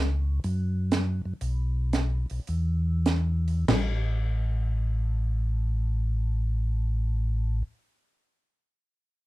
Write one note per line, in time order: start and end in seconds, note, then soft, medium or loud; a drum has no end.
0.00 0.40 C#2 medium
0.44 1.22 F#2 medium
0.44 open hi-hat soft
0.92 snare medium
0.92 closed hi-hat medium
1.25 1.33 F#2 soft
1.41 2.26 B1 medium
1.41 open hi-hat soft
1.93 snare medium
1.93 closed hi-hat soft
2.30 2.40 B1 soft
2.30 open hi-hat soft
2.47 3.65 E2 medium
2.47 open hi-hat soft
3.06 snare medium
3.06 closed hi-hat soft
3.48 open hi-hat soft
3.68 7.63 A1 medium
3.68 snare medium
3.68 floor tom medium
3.68 crash medium